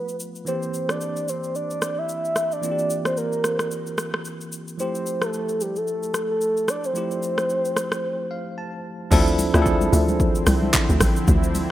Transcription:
Already playing: F3 A3 B3 F4 B4
0.08 shaker
0.20 shaker
0.35 shaker
0.45 E3 A#3 C4 G4 C5, shaker
0.62 shaker
0.74 shaker
0.89 D5, cross-stick, shaker
1.01 D5, shaker
1.16 shaker
1.28 C5, shaker
1.44 shaker
1.55 D5, shaker
1.71 shaker
1.82 cross-stick, shaker
1.98 E5
2.09 shaker
2.25 shaker
2.36 cross-stick, shaker
2.52 D5, shaker
2.61 E3 A#3 C4 F4, shaker
2.71 G4
2.79 shaker
2.90 shaker
3.05 C5, cross-stick, shaker
3.17 A#4, shaker
3.32 shaker
3.44 cross-stick, shaker
3.59 cross-stick, shaker
3.71 shaker
3.87 shaker
3.98 cross-stick, shaker
4.14 cross-stick
4.25 shaker
4.41 shaker
4.52 shaker
4.68 shaker
4.78 F3 A3 E4 G4 C5, shaker
4.95 shaker
5.06 shaker
5.22 A4, cross-stick, shaker
5.33 shaker
5.49 shaker
5.61 G4, shaker
5.76 A4, shaker
5.87 shaker
6.03 shaker
6.14 cross-stick, shaker
6.31 A4
6.41 shaker
6.57 shaker
6.68 D5, cross-stick, shaker
6.84 C5, shaker
6.94 F3 A3 E4 G4, shaker
7.11 shaker
7.23 shaker
7.38 cross-stick, shaker
7.50 shaker
7.65 shaker
7.77 cross-stick, shaker
7.92 cross-stick, shaker
8.31 F5
8.58 A5
9.11 D2 D3 F3 C4 D4 E4 A4, kick, crash, low conga, shaker
9.27 shaker
9.39 open hi-hat, high conga, shaker
9.54 D2 F3 C4 D4 E4 F4 G#4 C5 E5, cross-stick, shaker
9.62 A4, kick, shaker
9.81 high conga, shaker
9.92 D2 F4 C5 E5, open hi-hat, low conga, shaker
10.08 high conga, shaker
10.20 kick, shaker
10.35 shaker
10.47 C2, cross-stick, open hi-hat, high conga, shaker
10.62 high conga
10.73 kick, clap, low conga, shaker
10.89 D2, shaker
11.00 A1, kick, cross-stick, open hi-hat, high conga, low conga, shaker
11.16 shaker
11.28 D2, kick, low conga, shaker
11.43 shaker
11.55 open hi-hat, high conga, shaker

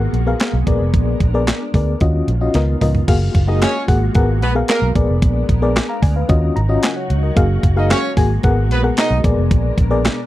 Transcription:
Already playing: G#3 A#3 B3 F#4 G#4 A#4 F#5
0.13 A#1, closed hi-hat
0.27 B3 G#4 A#4 F5
0.40 snare, clap, closed hi-hat
0.53 B1
0.67 A#1 B3 D4 G#4 A#4 D5, kick, closed hi-hat
0.80 F1
0.94 A#1, kick, closed hi-hat
1.20 A#1, kick, closed hi-hat
1.34 B3 G#4 A#4 D5
1.47 snare, clap, closed hi-hat
1.74 D2 B3 G#4 A#4 D5, kick, open hi-hat
2.00 D#2 D#3 C#4 F4 F#4 D#5, kick, closed hi-hat
2.28 A#1, closed hi-hat
2.41 C#4 F4 F#4 D#5
2.54 C#2 B3 F4 A#4 D#5, snare, closed hi-hat
2.81 C#2 B3 F4 A#4 D#5, mid tom, open hi-hat
2.95 floor tom
3.08 F#1 G#3 A#3 F4 F#4 G#4 F5, kick, closed hi-hat, crash
3.35 F#1, kick, closed hi-hat
3.48 A#3 D#4 F#4 G#4 D#5
3.61 C#4 C#5, snare, clap, closed hi-hat
3.87 G#1 A#3 F#4 G#4 F#5, kick, open hi-hat
4.15 G#1 B3 G#4 A#4 F#5, kick, closed hi-hat
4.41 A#1 B3 B4, closed hi-hat
4.55 B3 G#4 A#4 F5
4.68 A#3 A#4, snare, clap, closed hi-hat
4.82 B1
4.95 A#1 G#3 B3 D4 G#4 A#4 D5, kick, closed hi-hat
5.09 F1
5.22 A#1, kick, closed hi-hat
5.49 A#1, kick, closed hi-hat
5.62 B3 G#4 A#4 D5
5.76 G#5 D6, snare, clap, closed hi-hat
5.89 F5 A#5
6.02 D2 D5 G#5, kick, open hi-hat
6.16 B4 F5
6.29 D#2 C#3 F#3 C#4 D#4 F4 F#4 D#5, kick, closed hi-hat
6.56 G#1 A#5, closed hi-hat
6.69 C#4 F4 F#4 D#5
6.83 D#5 F#5 G#5, snare, clap, closed hi-hat
6.96 C#5 F#5
7.10 C#2, closed hi-hat
7.23 A#4 D#5
7.36 F#1 G#3 A#3 F#4 G#4 F5, kick, closed hi-hat
7.63 F#1, kick, closed hi-hat
7.76 A#3 D#4 F#4 G#4 D#5 F5
7.90 C#4 C#5, snare, clap, closed hi-hat
8.17 G#1 A#3 F#4 G#4 G#5, kick, open hi-hat
8.43 G#1 B2 A#3 B3 F#4 G#4 A#4 F#5, kick, closed hi-hat
8.70 A#1 B3 B4, closed hi-hat
8.83 B3 G#4 A#4 F#5
8.97 D#4 D#5, snare, clap, closed hi-hat
9.10 B1
9.24 A#1 B2 B3 D4 G#4 A#4 D5, kick, closed hi-hat
9.37 F1
9.51 A#1, kick, closed hi-hat
9.78 A#1, kick, closed hi-hat
9.90 B3 G#4 A#4 D5
10.05 snare, clap, closed hi-hat

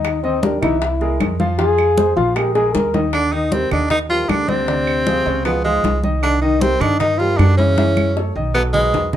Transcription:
Already playing: D#2 D#3 D#4 D#5
0.05 high bongo, high conga, claves
0.23 D#3 C4 D#4 D#5, high bongo, high conga
0.43 G3 D4 G4 A#4, high bongo, high conga
0.61 C2 E3 D#4 E4 E5, high conga, low conga, claves
0.82 E4, high bongo, high conga
1.01 G#3 G#4 A#4, high bongo, high conga
1.20 F2, high bongo, low bongo, high conga, claves
1.40 F3 F4 F5, high bongo, high conga
1.59 F3 F4 G#4 F5, high bongo, high conga
1.78 high bongo, high conga, claves
1.97 G#3 G#4 C5, high bongo, high conga
2.16 A#1 F3 F4 F5, high conga
2.36 G#3 G4 G#4 A#4, high bongo, high conga, claves
2.55 G#3 G#4 A#4, high bongo, high conga
2.75 D#2 A#4, low bongo, high conga
2.94 D#3 D#4 D#5, low bongo, high conga
3.13 D3 D4, high bongo, high conga, claves
3.32 D#3 D#4 D#5, high bongo, high conga
3.51 C3 G3 C4 G4 A#4, high bongo, high conga
3.71 D#2 D3 D#3 D4 D#4 D#5, high conga, low conga, claves
3.90 D#3 D#4, high bongo, high conga, low conga
4.09 F3 G3 F4 G4 A#4, high bongo, high conga
4.29 D2 D3 D4, high bongo, low bongo, high conga, claves
4.47 C3 D3 C4 D4 D5, high bongo, high conga
4.67 D3 D4 D5, high bongo, high conga
4.87 high bongo, high conga, claves
5.06 F3 F4 G#4, high bongo, high conga
5.26 C#2 C#3 C#4 C#5, high conga
5.44 B2 F3 B3 F4 G#4, high bongo, high conga, claves
5.64 G#2 F3 G#3 F4 G#4, high bongo, high conga
5.84 C2, high bongo, low bongo, high conga
6.03 D#3 D#4 D#5, high bongo, high conga
6.22 D3 D4, high bongo, high conga, claves
6.41 D#3 D#4 D#5, high bongo, high conga
6.61 C3 G3 C4 G4 A#4, high bongo, high conga
6.80 G2 D3 D#3 D4 D#4 D#5, high conga, low conga, claves
6.99 D#3 D#4, high bongo, high conga, low conga
7.18 F3 G3 F4 G4 A#4, high bongo, high conga
7.37 F#2 D3 D4, high bongo, low bongo, high conga, claves
7.57 C#3 E3 C#4 E4 E5, high bongo, high conga
7.78 E3 E4 E5, high bongo, high conga
7.97 high bongo, high conga, claves
8.16 A3 A4 C#5, high bongo
8.36 B1 D#3 D#4 D#5
8.54 B2 F#3 B3 F#4 A4, high bongo, claves
8.73 G#2 F#3 G#3 F#4 B4, high bongo, low conga
8.93 E2, high bongo, low bongo, low conga
9.13 D#3 D#4, high bongo, low conga

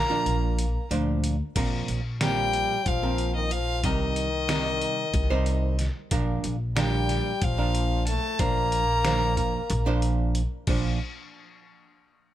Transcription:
Already playing: A#3 A#5
0.10 A#2 F3 D4 F4
0.26 A#1, closed hi-hat
0.59 closed hi-hat
0.91 D2 A#2 F3 D4 C5, closed hi-hat
1.24 closed hi-hat
1.55 A#1 A#2 F3 C4 A#4, kick, closed hi-hat, crash
1.88 A#1, closed hi-hat
2.21 A#2 F3 G3 C4 A#4 G5, snare, closed hi-hat
2.53 closed hi-hat
2.86 A#1 F3 F5, kick, closed hi-hat
3.03 A#2 F3 C4 A#4
3.18 closed hi-hat
3.36 D#3 D#5
3.51 F3 F5, closed hi-hat
3.84 C2 C3 D#3 G3 D#4 A#4 D#5, kick, closed hi-hat
4.16 closed hi-hat
4.49 C3 G3 D#4 A#4, snare, closed hi-hat
4.81 closed hi-hat
5.14 C2, kick, closed hi-hat
5.30 C3 G3 D#4 C5
5.46 closed hi-hat
5.79 snare, closed hi-hat
6.11 A#1 A#2 F3 D4 A#4, kick, closed hi-hat
6.44 A#1, closed hi-hat
6.76 A#2 F3 G3 D4 A#4 G5, snare, closed hi-hat
7.09 snare, closed hi-hat
7.42 A#1 F3 F5, kick, closed hi-hat
7.58 A#2 F3 D4 A#4
7.75 closed hi-hat
8.07 A3 A5, closed hi-hat
8.39 A#1 A#2 F3 A#3 D4 C5 A#5, kick, closed hi-hat
8.72 closed hi-hat
9.05 A#2 F3 D4 C5, snare, closed hi-hat
9.37 kick, closed hi-hat
9.70 A#1, closed hi-hat
9.86 A#2 F3 D4 C5
10.02 closed hi-hat
10.35 closed hi-hat
10.67 A#1 A#2 F3 D4 C5, kick, crash

